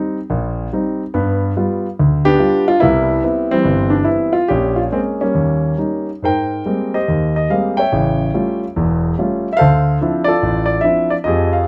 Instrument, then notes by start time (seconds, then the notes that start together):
grand piano
Already playing: G3 C4 D#4
0.30 A#1 A#2
0.73 G3 C4 D#4
1.14 G2 B3
1.57 G3 B3 F4
1.99 D2
2.25 B3 D4 G4
2.39 G3 B3 F4
2.68 F4
2.80 C2 G3 B3 E4
3.23 B3 C4 E4
3.51 E3 G3 C4
3.65 G1
3.90 D4
4.04 B3 C4 E4
4.33 F4
4.48 A#1 C#4 G4
4.76 F4
4.92 G#3 A#3 C4 C#4
5.21 G3 A#3 C#4
5.35 D#2
5.78 G3 C#4 D#4
6.22 G#2 A#4 C5 G5
6.66 G3 G#3 A#3 C4
6.94 G4 C5 D#5
7.08 D#2
7.36 D#5
7.50 G3 G#3 A#3 C4 F5
7.77 C#5 E5 G5
7.92 A1 C#3
8.34 G3 A3 C#4 F4
8.76 E1 E2
9.19 G3 A3 C#4 F4
9.53 E5
9.57 A4 C5 F5
9.61 D2
10.01 F3 C4 D4 E4
10.24 F4 A4 D5
10.43 A1
10.66 D5
10.81 F3 C4 D4 E4 E5
11.10 D5
11.24 F2 F3 G4 G#4 D#5
11.53 F5